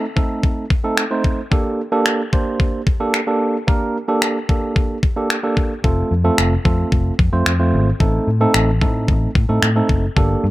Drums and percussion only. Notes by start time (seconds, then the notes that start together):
0.17 kick
0.43 kick
0.70 kick
0.97 finger snap
1.24 kick
1.52 kick
2.06 finger snap
2.33 kick
2.60 kick
2.87 kick
3.14 finger snap
3.68 kick
4.22 finger snap
4.49 kick
4.76 kick
5.03 kick
5.30 finger snap
5.57 kick
5.84 kick
6.38 finger snap
6.65 kick
6.92 kick
7.19 kick
7.46 finger snap
8.00 kick
8.54 finger snap
8.81 kick
9.08 kick
9.35 kick
9.63 finger snap
9.89 kick
10.17 kick